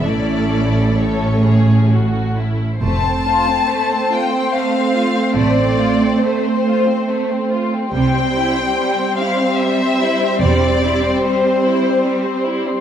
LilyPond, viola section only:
\new Staff \with { instrumentName = "Viola section" } { \time 3/4 \key a \major \tempo 4 = 71 <a cis'>4 <a cis'>4.~ <a cis'>16 r16 | \key f \major <a c'>2.~ | <a c'>2. | <g c'>2.~ |
<g c'>2. | }